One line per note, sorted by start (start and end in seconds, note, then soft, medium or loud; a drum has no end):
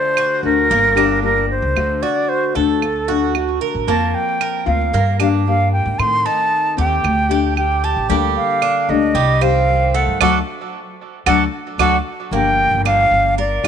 0.00 0.42 D3 medium
0.00 0.16 A3 medium
0.00 0.43 A3 medium
0.00 0.44 D4 medium
0.00 0.42 F#4 medium
0.00 0.44 C5 loud
0.17 0.69 F#4 medium
0.17 claves medium
0.43 0.69 D2 medium
0.43 0.69 A3 medium
0.43 0.69 D4 medium
0.43 0.69 F#4 medium
0.43 1.20 A#4 loud
0.69 1.59 G1 loud
0.69 0.96 A#3 medium
0.69 muted nylon-string guitar stroke medium
0.96 1.21 G3 medium
0.96 1.21 A#3 medium
0.96 1.22 D4 medium
0.96 1.48 D4 medium
0.96 1.22 G4 medium
0.96 claves medium
1.22 1.74 G3 medium
1.22 1.75 A#3 soft
1.22 1.75 D4 medium
1.22 1.75 G4 medium
1.22 1.49 A#4 loud
1.50 2.04 C5 medium
1.62 1.75 C#2 medium
1.76 2.01 D2 medium
1.76 2.54 D3 medium
1.76 2.55 A3 medium
1.76 2.55 D4 medium
1.76 2.54 F#4 medium
1.76 claves medium
2.02 2.54 F#4 medium
2.02 2.30 D5 medium
2.29 2.57 C5 loud
2.55 3.57 D2 loud
2.55 2.82 A3 medium
2.55 2.81 D4 medium
2.55 2.80 F#4 medium
2.55 3.35 A4 medium
2.55 3.07 A4 medium
2.82 muted nylon-string guitar stroke medium
2.82 claves medium
3.08 3.34 A3 medium
3.08 3.35 D4 medium
3.08 3.60 F#4 medium
3.08 3.34 F#4 medium
3.35 3.87 D3 soft
3.35 3.87 A3 soft
3.35 3.87 D4 soft
3.35 3.88 F#4 medium
3.35 claves medium
3.61 3.87 A#4 medium
3.75 3.87 A1 medium
3.87 4.13 F2 loud
3.87 4.66 F3 medium
3.87 4.66 A#3 medium
3.87 4.39 A#3 medium
3.87 4.66 C4 medium
3.87 4.65 F4 medium
3.87 4.16 A5 loud
4.14 4.67 G5 loud
4.41 4.92 A#4 medium
4.41 claves medium
4.66 4.92 D2 medium
4.66 4.93 A#3 medium
4.66 4.92 C4 medium
4.66 4.92 F4 medium
4.66 5.17 F5 medium
4.93 5.82 G2 loud
4.93 5.19 A#3 medium
4.93 muted nylon-string guitar stroke medium
5.19 5.45 G3 medium
5.19 5.45 A#3 medium
5.19 5.71 D4 medium
5.19 5.45 D4 medium
5.19 5.45 G4 medium
5.19 5.28 F5 medium
5.19 claves medium
5.46 5.98 G3 medium
5.46 5.98 A#3 soft
5.46 5.99 D4 medium
5.46 5.99 G4 medium
5.46 5.72 F5 loud
5.73 6.00 G5 medium
5.86 5.98 G#2 medium
5.99 6.24 A2 medium
5.99 6.77 D#3 medium
5.99 6.77 A3 medium
5.99 6.76 C4 medium
5.99 6.27 C6 loud
5.99 claves medium
6.26 6.77 D#4 medium
6.26 6.78 A5 loud
6.77 7.03 D#2 loud
6.77 7.02 A3 medium
6.77 7.03 C4 medium
6.77 7.29 G4 medium
6.77 7.54 G5 loud
7.03 7.93 D2 loud
7.03 muted nylon-string guitar stroke medium
7.03 claves medium
7.29 7.55 A3 medium
7.29 7.56 D4 medium
7.29 7.55 G4 medium
7.29 7.82 G4 medium
7.56 8.07 D3 soft
7.56 8.08 A3 medium
7.56 8.09 D4 medium
7.56 8.09 G4 medium
7.56 7.86 G5 medium
7.56 claves medium
7.84 8.09 G4 medium
7.84 8.10 A5 medium
7.96 8.09 A1 medium
8.09 8.35 D2 medium
8.09 8.87 D3 medium
8.09 8.88 G3 medium
8.09 8.61 G3 medium
8.09 8.88 A#3 medium
8.09 8.88 D4 medium
8.09 8.88 A4 medium
8.09 8.16 G5 loud
8.36 8.91 F5 medium
8.62 9.14 D4 medium
8.62 claves medium
8.89 9.14 D2 loud
8.89 9.15 G3 medium
8.89 9.15 A#3 medium
8.89 9.15 D4 medium
8.89 9.15 A4 medium
8.89 9.43 D#5 medium
9.15 10.03 C2 loud
9.15 9.41 G3 medium
9.15 muted nylon-string guitar stroke medium
9.41 9.66 D#3 medium
9.41 9.67 G3 medium
9.41 9.93 C4 medium
9.41 9.67 C4 medium
9.41 9.67 G4 medium
9.41 9.97 F5 loud
9.41 claves medium
9.68 10.20 D#3 soft
9.68 10.20 G3 medium
9.68 10.20 C4 medium
9.68 10.21 G4 medium
9.94 10.20 A3 medium
9.94 10.21 F#5 medium
10.07 10.20 G2 medium
10.20 10.40 D2 medium
10.20 10.38 F#3 medium
10.20 10.38 A3 loud
10.20 10.38 D4 loud
10.20 10.38 D4 medium
10.20 10.38 F#4 medium
10.20 10.38 A4 loud
10.20 10.39 F#5 medium
10.20 claves loud
11.26 11.46 D2 loud
11.26 11.44 F#3 loud
11.26 11.44 A3 loud
11.26 11.43 D4 loud
11.26 11.44 D4 loud
11.26 11.43 F#4 medium
11.26 11.43 A4 medium
11.26 11.43 F#5 loud
11.26 claves medium
11.78 11.98 D2 medium
11.78 11.96 F#3 medium
11.78 11.96 A3 loud
11.78 11.96 D4 loud
11.78 11.96 D4 medium
11.78 11.97 F#4 medium
11.78 11.97 A4 medium
11.78 11.97 F#5 medium
11.78 claves medium
12.31 12.69 G1 medium
12.31 13.36 D3 medium
12.31 13.36 F3 medium
12.31 12.84 A#3 medium
12.31 13.37 A#3 medium
12.31 13.38 D4 medium
12.31 13.38 G4 medium
12.31 12.82 G5 loud
12.71 13.09 G1 medium
12.85 13.36 D4 medium
12.85 13.35 F5 loud
12.85 claves medium
13.11 13.61 G1 medium
13.37 13.63 A#4 medium
13.37 13.68 D5 medium
13.37 muted nylon-string guitar stroke medium
13.63 13.68 G1 medium
13.63 13.68 D4 medium
13.63 13.68 F4 medium
13.63 13.68 G4 medium
13.63 claves medium